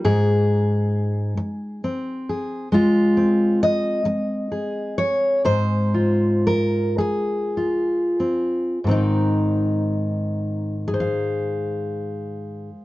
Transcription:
0.00 0.97 D#4 medium
0.05 1.36 G#2 medium
0.05 2.28 G#4 medium
1.37 muted steel-string acoustic guitar stroke medium
1.84 2.67 C4 soft
2.29 2.68 G#4 soft
2.72 4.06 G#3 medium
2.72 3.62 F4 medium
3.17 6.50 C4 soft
3.63 4.98 D#5 loud
4.05 muted steel-string acoustic guitar stroke medium
4.52 5.94 G#4 soft
4.98 5.45 C#5 medium
5.45 6.99 G#2 medium
5.45 6.46 C5 medium
5.94 7.56 F4 soft
6.47 6.98 A#4 medium
6.98 8.85 G#4 medium
6.98 muted steel-string acoustic guitar stroke medium
7.57 8.78 F4 soft
8.20 8.78 C4 soft
8.84 12.69 G#2 medium
8.84 12.71 D#3 medium
8.88 10.87 C4 soft
8.88 10.75 D#4 medium
10.88 12.85 G#4 medium
10.94 12.85 C5 medium
11.00 12.85 F5 medium

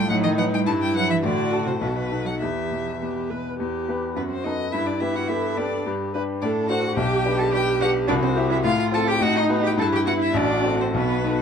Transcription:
0.00 0.10 A2 medium
0.00 0.12 F4 medium
0.00 0.12 A4 medium
0.08 0.65 A2 loud
0.08 0.26 F#3 loud
0.08 0.65 D#4 loud
0.08 0.15 F#5 loud
0.23 0.39 D#3 loud
0.23 0.29 D#5 loud
0.37 0.54 F#3 loud
0.37 0.63 D#4 medium
0.37 0.64 B4 medium
0.37 0.44 F#5 loud
0.52 0.66 G3 loud
0.52 0.59 G5 loud
0.66 1.22 G2 medium
0.66 0.72 A3 medium
0.66 1.21 E4 loud
0.66 0.72 A5 loud
0.81 0.94 G3 medium
0.81 0.95 G5 loud
0.94 1.10 F#3 loud
0.94 1.21 E4 medium
0.94 1.21 B4 medium
0.94 1.09 F#5 loud
1.08 1.24 E3 medium
1.08 1.16 E5 loud
1.22 1.79 A2 medium
1.22 1.65 D3 loud
1.22 1.80 F#4 loud
1.22 1.69 D5 loud
1.52 1.78 F#4 medium
1.52 1.78 A4 medium
1.65 1.71 C3 medium
1.65 1.82 C5 medium
1.80 2.39 B1 medium
1.80 2.24 B2 medium
1.80 2.43 F#4 medium
1.80 1.89 B4 medium
1.87 1.97 A4 medium
1.96 2.27 B4 medium
2.11 2.38 D#4 medium
2.11 2.38 A4 medium
2.24 2.30 F#3 medium
2.24 2.39 F#5 medium
2.39 3.57 E2 medium
2.39 3.28 E3 medium
2.39 2.96 G4 medium
2.39 3.28 E5 medium
2.71 3.19 B2 medium
3.01 3.49 B3 medium
3.01 3.32 G4 medium
3.30 3.60 B2 soft
3.30 3.59 B4 medium
3.60 3.88 E2 medium
3.60 4.13 G4 medium
3.89 4.14 B3 medium
3.89 4.14 G4 soft
3.89 4.15 B4 medium
4.15 4.44 F#2 medium
4.15 4.21 B3 medium
4.15 4.72 F#4 medium
4.15 4.22 B4 medium
4.28 4.35 C4 medium
4.32 4.46 C5 medium
4.43 4.71 B3 soft
4.43 4.51 D#4 medium
4.43 4.71 A4 medium
4.43 4.71 B4 medium
4.43 4.73 D#5 loud
4.71 5.01 G2 medium
4.71 4.87 E4 medium
4.71 5.32 E4 medium
4.71 4.88 E5 loud
4.86 4.98 D4 medium
4.86 5.01 D5 medium
4.99 5.27 B3 medium
4.99 5.15 E4 medium
4.99 5.27 G4 medium
4.99 5.27 B4 medium
4.99 5.17 E5 loud
5.14 5.29 F#4 medium
5.14 5.29 F#5 medium
5.27 5.55 B3 medium
5.27 5.58 E4 medium
5.27 5.55 G4 medium
5.27 5.88 A4 medium
5.27 5.56 B4 medium
5.27 5.59 E5 medium
5.56 5.84 B3 medium
5.56 5.85 D4 medium
5.56 5.84 G4 medium
5.56 5.84 B4 medium
5.56 5.86 D5 loud
5.86 6.13 G2 medium
5.86 6.13 G4 medium
6.14 6.40 D4 medium
6.14 6.40 G4 medium
6.14 6.22 B4 medium
6.14 6.40 B4 medium
6.40 6.69 A2 medium
6.40 6.69 D4 medium
6.40 6.96 A4 medium
6.40 6.50 D5 medium
6.67 6.95 D4 medium
6.67 6.96 F#4 loud
6.67 6.95 F#4 medium
6.67 6.95 C5 medium
6.67 6.96 F#5 loud
6.96 7.24 B1 medium
6.96 7.38 G4 loud
6.96 8.09 G4 loud
6.96 7.41 G5 loud
7.25 7.50 D4 medium
7.25 7.50 G4 medium
7.25 7.51 B4 medium
7.38 7.44 A4 medium
7.38 7.52 A5 loud
7.51 7.78 D4 medium
7.51 7.59 G4 medium
7.51 7.78 G4 medium
7.51 7.78 B4 medium
7.51 7.80 G5 loud
7.80 8.06 D4 medium
7.80 7.88 F#4 loud
7.80 8.06 G4 medium
7.80 8.06 B4 medium
7.80 7.90 F#5 loud
8.08 8.36 C2 loud
8.08 8.13 D4 loud
8.08 8.66 F#4 loud
8.08 8.14 D5 loud
8.22 8.30 C4 medium
8.22 8.50 C5 medium
8.36 8.61 C4 medium
8.36 8.62 E4 medium
8.36 8.62 G4 medium
8.50 8.56 E4 loud
8.50 8.57 E5 loud
8.64 8.92 A2 loud
8.64 8.69 F4 loud
8.64 9.21 F4 medium
8.64 8.78 F5 loud
8.79 8.95 F4 loud
8.79 8.85 F5 loud
8.92 9.18 C4 medium
8.92 9.18 F4 medium
8.92 9.18 A4 medium
8.92 9.09 A4 loud
8.92 8.99 A5 loud
9.07 9.22 G4 loud
9.07 9.24 G5 loud
9.20 9.48 A2 loud
9.20 9.80 D#4 loud
9.20 9.37 F#4 loud
9.20 9.36 F#5 loud
9.36 9.62 D#4 loud
9.36 9.44 D#5 loud
9.49 9.75 B3 medium
9.49 9.75 F#4 medium
9.49 9.75 B4 medium
9.63 9.69 G4 loud
9.63 9.72 G5 loud
9.77 10.05 G2 loud
9.77 10.37 E4 loud
9.77 9.84 A4 loud
9.81 9.86 A5 loud
9.92 9.98 G4 medium
9.92 10.01 G5 loud
10.05 10.32 B3 medium
10.05 10.32 E4 medium
10.05 10.11 F#4 loud
10.05 10.33 B4 medium
10.05 10.13 F#5 loud
10.19 10.33 E4 loud
10.23 10.38 E5 loud
10.34 10.63 A1 loud
10.34 10.78 D4 loud
10.34 10.93 F#4 loud
10.34 10.82 D5 loud
10.64 10.91 C4 medium
10.64 10.91 F#4 medium
10.64 10.92 A4 medium
10.80 10.86 C4 medium
10.80 10.95 C5 medium
10.94 11.23 B1 loud
10.94 11.37 B3 loud
10.94 11.42 F#4 medium
10.94 11.39 B4 loud
11.24 11.42 B3 medium
11.24 11.42 D#4 medium
11.24 11.42 A4 medium
11.38 11.42 F#4 medium

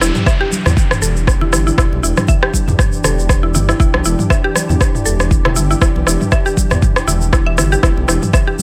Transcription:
0.00 0.11 E1 medium
0.00 8.62 E3 medium
0.00 8.62 D4 medium
0.00 0.14 E4 medium
0.00 8.62 G4 loud
0.00 cross-stick medium
0.00 downlifter medium
0.00 shaker loud
0.15 mid tom medium
0.15 high conga medium
0.15 shaker soft
0.26 0.34 E5 medium
0.26 kick loud
0.26 cross-stick medium
0.26 muted conga soft
0.26 shaker soft
0.41 0.51 G4 loud
0.52 high conga loud
0.52 shaker medium
0.66 0.74 E2 medium
0.66 cross-stick medium
0.66 mid tom medium
0.66 muted conga medium
0.66 low conga medium
0.66 shaker soft
0.77 kick loud
0.77 shaker soft
0.91 cross-stick medium
0.91 mid tom medium
0.91 shaker soft
1.02 1.54 E1 medium
1.02 1.16 A4 medium
1.02 shaker medium
1.17 muted conga soft
1.17 shaker soft
1.27 kick loud
1.27 cross-stick medium
1.27 shaker medium
1.41 1.51 E4 medium
1.41 low conga medium
1.53 1.71 G1 loud
1.53 1.60 E4 medium
1.53 cross-stick medium
1.53 muted conga soft
1.53 shaker medium
1.67 1.77 E4 medium
1.67 shaker soft
1.78 1.88 E1 loud
1.78 1.86 E4 loud
1.78 kick loud
1.78 cross-stick loud
1.78 shaker medium
1.92 2.00 B1 medium
1.92 muted conga medium
2.03 2.13 E1 medium
2.03 2.16 E4 medium
2.03 shaker medium
2.17 cross-stick medium
2.17 mid tom medium
2.17 high conga loud
2.17 shaker soft
2.27 2.36 E5 medium
2.27 kick loud
2.27 muted conga soft
2.27 shaker medium
2.43 2.53 G4 loud
2.43 cross-stick medium
2.54 kick medium
2.54 high conga loud
2.54 shaker loud
2.68 2.75 E2 medium
2.68 mid tom medium
2.68 muted conga medium
2.68 low conga medium
2.68 shaker soft
2.79 kick loud
2.79 cross-stick medium
2.79 mid tom medium
2.79 high conga medium
2.79 shaker medium
2.93 shaker soft
3.04 3.56 E1 medium
3.04 3.18 A4 medium
3.04 cross-stick medium
3.04 low conga loud
3.04 shaker medium
3.18 muted conga soft
3.18 shaker soft
3.29 kick loud
3.29 cross-stick loud
3.29 shaker medium
3.43 3.53 E4 medium
3.54 3.73 G1 loud
3.54 3.62 E4 medium
3.54 muted conga soft
3.54 low conga loud
3.54 shaker medium
3.69 3.79 E4 medium
3.69 cross-stick medium
3.69 shaker soft
3.80 3.89 E1 loud
3.80 3.88 E4 loud
3.80 kick loud
3.80 shaker soft
3.94 4.01 B1 medium
3.94 cross-stick medium
3.94 muted conga medium
4.05 4.15 E1 medium
4.05 4.18 E4 medium
4.05 shaker loud
4.19 mid tom medium
4.19 high conga loud
4.19 shaker soft
4.30 4.38 E5 medium
4.30 kick loud
4.30 cross-stick medium
4.30 muted conga soft
4.30 shaker medium
4.44 4.54 G4 loud
4.56 cross-stick medium
4.56 high conga loud
4.56 shaker medium
4.69 4.77 E2 medium
4.69 mid tom medium
4.69 muted conga soft
4.69 low conga medium
4.69 shaker soft
4.81 kick loud
4.81 cross-stick loud
4.81 shaker medium
4.95 mid tom medium
4.95 shaker soft
5.06 5.58 E1 medium
5.06 5.19 A4 medium
5.06 shaker loud
5.19 cross-stick medium
5.19 muted conga soft
5.19 shaker soft
5.31 kick loud
5.31 shaker medium
5.45 5.55 E4 medium
5.45 cross-stick loud
5.45 low conga loud
5.56 5.74 G1 loud
5.56 5.64 E4 medium
5.56 muted conga soft
5.56 shaker medium
5.71 5.81 E4 medium
5.71 shaker soft
5.81 5.91 E1 medium
5.81 5.89 E4 loud
5.81 kick loud
5.81 cross-stick loud
5.81 shaker medium
5.95 6.03 B1 medium
5.95 muted conga medium
6.07 6.16 E1 medium
6.07 6.20 E4 medium
6.07 cross-stick medium
6.07 shaker loud
6.21 mid tom medium
6.21 high conga medium
6.21 shaker soft
6.32 6.39 E5 medium
6.32 kick loud
6.32 cross-stick medium
6.32 muted conga soft
6.32 shaker soft
6.46 6.56 G4 loud
6.46 shaker soft
6.57 kick medium
6.57 high conga loud
6.57 shaker medium
6.70 6.79 E2 medium
6.70 cross-stick medium
6.70 mid tom medium
6.70 muted conga soft
6.70 low conga medium
6.70 shaker soft
6.82 kick loud
6.82 mid tom medium
6.82 high conga medium
6.82 shaker medium
6.96 cross-stick loud
6.96 shaker soft
7.07 7.59 E1 medium
7.07 7.20 E4 loud
7.07 low conga medium
7.07 shaker loud
7.21 muted conga soft
7.21 shaker soft
7.33 7.45 E4 medium
7.33 kick loud
7.33 cross-stick loud
7.33 shaker soft
7.46 7.57 E5 loud
7.58 7.76 G1 loud
7.58 7.66 E4 medium
7.58 cross-stick medium
7.58 muted conga medium
7.58 low conga medium
7.58 shaker loud
7.72 7.78 G4 loud
7.72 shaker soft
7.83 7.93 E1 medium
7.83 7.91 E4 loud
7.83 kick loud
7.83 cross-stick loud
7.83 shaker soft
7.97 8.05 B1 medium
7.97 muted conga medium
8.08 8.18 E1 medium
8.08 8.21 E4 medium
8.08 cross-stick medium
8.08 shaker loud
8.22 mid tom medium
8.22 high conga medium
8.22 shaker soft
8.33 8.41 E5 medium
8.33 kick loud
8.33 cross-stick medium
8.33 muted conga soft
8.33 shaker medium
8.47 8.58 G4 loud
8.59 high conga loud

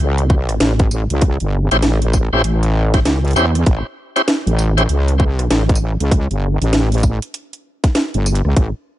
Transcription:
0.00 0.59 C#2 loud
0.18 closed hi-hat soft
0.30 kick loud
0.49 cross-stick medium
0.49 closed hi-hat medium
0.60 1.07 A1 medium
0.60 snare loud
0.60 closed hi-hat medium
0.79 kick loud
0.79 closed hi-hat soft
0.91 tambourine medium
1.10 1.38 C#2 medium
1.10 closed hi-hat medium
1.21 kick loud
1.21 closed hi-hat medium
1.40 1.68 G1 loud
1.40 closed hi-hat soft
1.71 2.29 A1 loud
1.71 1.77 C#4 medium
1.71 1.77 E4 medium
1.71 1.77 G4 medium
1.71 1.77 C5 loud
1.71 closed hi-hat medium
1.82 snare loud
1.82 closed hi-hat medium
2.02 closed hi-hat soft
2.13 kick medium
2.13 tambourine medium
2.32 2.42 A1 loud
2.32 2.42 C#4 loud
2.32 2.42 E4 medium
2.32 2.42 G4 medium
2.32 2.42 C5 loud
2.44 3.03 A1 loud
2.44 closed hi-hat medium
2.63 closed hi-hat soft
2.94 3.00 C#4 medium
2.94 3.00 E4 medium
2.94 3.00 G4 medium
2.94 3.00 C5 medium
2.94 kick loud
2.94 snare soft
2.94 closed hi-hat medium
3.05 3.34 C#2 medium
3.05 snare loud
3.05 closed hi-hat medium
3.25 closed hi-hat soft
3.28 cross-stick soft
3.28 closed hi-hat soft
3.31 closed hi-hat soft
3.33 3.64 E2 loud
3.33 3.46 C#4 medium
3.33 3.46 E4 medium
3.33 3.46 G4 medium
3.33 3.46 C5 loud
3.33 closed hi-hat soft
3.33 tambourine medium
3.55 cross-stick soft
3.55 closed hi-hat medium
3.66 3.83 A1 loud
3.66 kick loud
3.66 closed hi-hat medium
4.16 4.22 C#4 medium
4.16 4.22 E4 medium
4.16 4.22 G4 medium
4.16 4.22 C5 medium
4.16 closed hi-hat soft
4.28 snare loud
4.28 closed hi-hat medium
4.46 4.87 A1 medium
4.46 closed hi-hat soft
4.59 tambourine medium
4.77 4.83 C#4 medium
4.77 4.83 E4 medium
4.77 4.83 G4 medium
4.77 4.83 C5 medium
4.77 closed hi-hat medium
4.89 5.31 C#2 loud
4.89 closed hi-hat medium
5.08 closed hi-hat soft
5.20 kick loud
5.31 5.48 C2 loud
5.39 cross-stick soft
5.39 closed hi-hat soft
5.50 5.97 A1 medium
5.50 snare loud
5.50 closed hi-hat medium
5.69 kick loud
5.69 closed hi-hat soft
5.75 tambourine medium
6.00 6.28 C#2 loud
6.00 closed hi-hat soft
6.11 kick loud
6.11 closed hi-hat medium
6.30 6.58 G1 loud
6.30 closed hi-hat soft
6.61 7.19 A1 loud
6.61 closed hi-hat medium
6.73 snare loud
6.73 closed hi-hat medium
6.92 closed hi-hat soft
6.94 closed hi-hat soft
7.00 kick medium
7.00 closed hi-hat soft
7.00 tambourine medium
7.22 closed hi-hat medium
7.34 closed hi-hat medium
7.53 closed hi-hat soft
7.84 kick loud
7.84 snare soft
7.84 closed hi-hat soft
7.95 snare loud
7.95 closed hi-hat medium
8.14 8.42 G1 loud
8.14 closed hi-hat soft
8.26 cross-stick soft
8.26 tambourine medium
8.35 closed hi-hat medium
8.45 8.54 C#2 loud
8.45 cross-stick soft
8.57 8.73 A1 loud
8.57 kick loud
8.57 closed hi-hat medium

